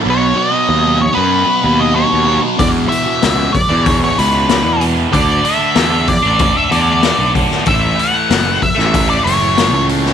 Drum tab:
HH |----------------|o-o-o-o-o-o-o-o-|o-o-o-o-o-o-o-o-|o-o-o-o-o-o-o-o-|
SD |----------------|----o-------o---|----o-------o--o|----o--o----o--o|
BD |----------------|o-----o-o-------|o-----o-o-----o-|o-----o-o-------|